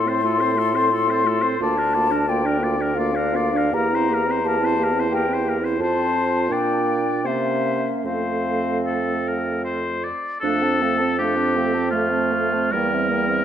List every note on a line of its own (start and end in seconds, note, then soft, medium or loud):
0.00 1.56 A2 medium
0.00 1.57 C6 medium
0.07 0.23 C4 soft
0.07 0.23 A4 soft
0.07 0.24 C5 medium
0.23 0.42 A3 soft
0.23 0.43 F4 medium
0.23 0.42 A4 soft
0.40 0.57 C4 soft
0.40 0.59 A4 soft
0.40 0.60 C5 soft
0.56 0.76 A3 medium
0.56 0.77 F4 soft
0.56 0.77 A4 soft
0.74 0.92 C4 medium
0.74 0.91 A4 soft
0.74 0.92 C5 soft
0.91 1.10 A3 medium
0.91 1.10 F4 soft
0.91 1.12 A4 medium
1.08 1.26 C4 soft
1.08 1.27 A4 soft
1.08 1.28 C5 soft
1.24 1.44 A3 medium
1.24 1.44 F4 medium
1.24 1.43 A4 soft
1.42 1.59 C4 soft
1.42 1.59 A4 medium
1.42 1.60 C5 soft
1.59 3.70 D2 medium
1.59 1.79 A#3 medium
1.59 1.79 F4 medium
1.59 1.79 D5 medium
1.59 2.31 A5 loud
1.78 1.96 D4 soft
1.78 1.97 D4 medium
1.78 1.96 A#4 medium
1.94 2.13 A#3 medium
1.94 2.13 F4 medium
1.94 2.13 D5 soft
2.11 2.27 D4 soft
2.11 2.28 D4 soft
2.11 2.27 A#4 medium
2.28 2.46 A#3 medium
2.28 2.47 F4 medium
2.28 2.47 D5 soft
2.28 2.97 G5 medium
2.44 2.61 D4 medium
2.44 2.64 D4 medium
2.44 2.65 A#4 medium
2.59 2.80 A#3 medium
2.59 2.80 F4 soft
2.63 2.83 D5 medium
2.78 2.95 D4 medium
2.78 2.96 D4 soft
2.78 2.97 A#4 soft
2.95 3.16 A#3 medium
2.95 3.16 F4 medium
2.95 3.18 D5 medium
2.95 3.75 F5 medium
3.15 3.36 D4 soft
3.15 3.35 D4 medium
3.15 3.37 A#4 soft
3.33 3.55 A#3 medium
3.33 3.54 F4 medium
3.33 3.58 D5 medium
3.53 3.71 D4 medium
3.53 3.73 D4 medium
3.57 3.74 A#4 soft
3.72 5.75 E2 medium
3.72 3.94 A#3 medium
3.72 3.92 G4 medium
3.72 3.96 A#4 medium
3.72 4.47 A#5 medium
3.90 4.11 C4 soft
3.90 4.10 E4 medium
3.95 4.15 C5 medium
4.08 4.27 A#3 medium
4.08 4.27 G4 medium
4.14 4.32 A#4 soft
4.26 4.42 C4 soft
4.26 4.42 E4 soft
4.31 4.46 C5 medium
4.43 4.61 A#3 medium
4.43 4.61 G4 medium
4.43 5.11 A5 medium
4.48 4.66 A#4 medium
4.59 4.79 C4 medium
4.59 4.78 E4 medium
4.65 4.85 C5 soft
4.77 4.95 A#3 medium
4.77 4.94 G4 soft
4.84 5.01 A#4 soft
4.93 5.09 C4 medium
4.93 5.09 E4 soft
5.00 5.14 C5 soft
5.09 5.27 A#3 medium
5.09 5.29 G4 soft
5.09 5.54 G5 medium
5.15 5.35 A#4 medium
5.26 5.45 C4 soft
5.26 5.45 E4 soft
5.33 5.50 C5 soft
5.43 5.62 A#3 soft
5.43 5.62 G4 medium
5.49 5.66 A#4 soft
5.60 5.77 C4 soft
5.60 5.78 E4 soft
5.64 5.80 C5 soft
5.77 6.52 F2 medium
5.77 6.50 C4 medium
5.77 6.51 F4 medium
5.77 6.53 A5 medium
5.82 6.54 C5 medium
6.48 7.26 A#2 medium
6.48 7.08 A#3 soft
6.48 7.27 D4 soft
6.48 7.29 G5 medium
6.52 7.27 D5 soft
7.24 7.88 C3 medium
7.24 8.06 A#3 soft
7.24 8.07 C#4 soft
7.24 7.89 C5 soft
7.24 8.06 E5 medium
8.04 10.06 F2 soft
8.04 10.09 A3 soft
8.04 10.10 C4 soft
8.04 8.78 C5 soft
8.04 9.64 F5 medium
8.86 9.29 A4 soft
9.28 9.64 A#4 medium
9.64 10.05 C5 medium
10.04 10.40 D5 soft
10.40 12.69 F2 medium
10.40 10.64 A3 medium
10.40 10.83 D4 medium
10.40 11.14 A4 medium
10.40 10.64 F5 soft
10.62 10.83 C4 soft
10.62 10.84 A5 medium
10.81 11.03 A3 soft
10.81 11.20 C4 medium
10.81 10.99 F5 soft
10.97 11.19 C4 soft
10.97 11.18 A5 soft
11.19 11.39 A3 soft
11.19 11.57 D4 medium
11.19 11.90 G4 medium
11.19 11.38 F5 soft
11.36 11.58 C4 soft
11.36 11.59 A5 soft
11.56 11.76 A3 soft
11.56 11.94 C4 medium
11.56 11.75 F5 soft
11.74 11.91 C4 soft
11.74 11.93 A5 soft
11.91 12.13 A3 soft
11.91 12.73 A3 medium
11.91 12.74 F4 medium
11.91 12.12 F5 soft
12.11 12.34 C4 soft
12.11 12.34 A5 soft
12.32 12.55 A3 soft
12.32 12.54 F5 soft
12.53 12.73 C4 soft
12.53 12.72 A5 soft
12.72 13.45 E2 medium
12.72 13.45 G3 medium
12.72 12.94 A#3 soft
12.72 13.45 A#4 medium
12.72 12.96 G5 medium
12.93 13.11 C4 soft
12.93 13.14 E5 soft
13.10 13.29 A#3 medium
13.10 13.33 G5 soft
13.28 13.45 C4 soft
13.28 13.45 E5 soft